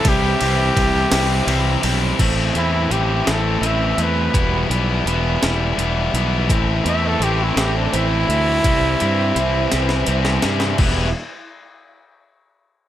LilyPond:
<<
  \new Staff \with { instrumentName = "String machine" } { \time 6/8 \key e \minor \tempo 4. = 56 << { <b' e''>2. | r2. | r2. | <a' g''>2. |
<b' e''>2. | <e' d'' g''>8 r2 r8 | } \\ { c''2. | r2. | r2. | c''2.~ |
c''2. | r2. | } >> }
  \new Staff \with { instrumentName = "Trumpet" } { \time 6/8 \key e \minor g'2~ g'8 r8 | r8 e'8 g'8 a'8 e''8 b'8~ | b'8 r2 r8 | r8 e''16 a'16 g'16 e'16 g'16 d'16 e'4~ |
e'2 r4 | r2. | }
  \new Staff \with { instrumentName = "Distorted electric guitar" } { \time 6/8 \key e \minor <c e g c' e'>8 <c e g c' e'>4 <c e g c' e'>8 <c e g c' e'>8 <c e g c' e'>8 | <a, e a c' e'>8 <a, e a c' e'>8 <a, e a c' e'>8 <a, e a c' e'>8 <a, e a c' e'>8 <a, e a c' e'>8 | <e g b e'>8 <e g b e'>8 <e g b e'>8 <e g b e'>8 <e g b e'>8 <e g b e'>8 | <a, e a c' e'>8 <a, e a c' e'>8 <a, e a c' e'>8 <a, e a c' e'>8 <a, e a c' e'>8 <a, e a c' e'>8 |
<c g c' e'>8 <c g c' e'>8 <c g c' e'>8 <c g c' e'>8 <c g c' e'>8 <c g c' e'>8 | <e g b e'>8 r2 r8 | }
  \new Staff \with { instrumentName = "Overdriven electric guitar" } { \time 6/8 \key e \minor <c g c' e'>8 <c g c' e'>4 <c g c' e'>8 <c g c' e'>8 <c g c' e'>8 | <a, e a c' e'>8 <a, e a c' e'>8 <a, e a c' e'>8 <a, e a c' e'>8 <a, e a c' e'>8 <a, e a c' e'>8 | <e g b e'>8 <e g b e'>8 <e g b e'>8 <e g b e'>8 <e g b e'>8 <e g b e'>8 | <a, e a c' e'>8 <a, e a c' e'>8 <a, e a c' e'>8 <a, e a c' e'>8 <a, e a c' e'>8 <a, e a c' e'>8 |
<c e g c' e'>8 <c e g c' e'>8 <c e g c' e'>8 <c e g c' e'>8 <c e g c' e'>8 <c e g c' e'>8 | <e b e' g' b'>8 r2 r8 | }
  \new Staff \with { instrumentName = "Fingered electric bass" } { \clef bass \time 6/8 \key e \minor c,8 c,8 c,8 c,8 c,8 b,,8 | a,,8 e,8 a,,8 a,,8 a,,8 e,8 | e,,8 b,,8 e,,8 e,,8 e,,8 b,,8 | a,,8 e,8 a,,8 a,,8 a,,8 d,8 |
c,8 g,8 c,8 c,8 c,8 g,8 | e,,8 r2 r8 | }
  \new DrumStaff \with { instrumentName = "Drums" } \drummode { \time 6/8 <bd cymr>8 cymr8 <bd cymr>8 <cymr sn>8 cymr8 cymr8 | <cymc hh bd>8 hh8 hh8 <hh sn>8 hh8 hh8 | <hh bd>8 hh8 hh8 <hh sn>8 hh8 hh8 | <hh bd>8 hh8 hh8 <hh sn>8 hh8 hh8 |
<hh bd>8 hh8 hh8 <hh sn>16 sn16 hh16 sn16 <hh sn>16 sn16 | <cymc bd>4. r4. | }
>>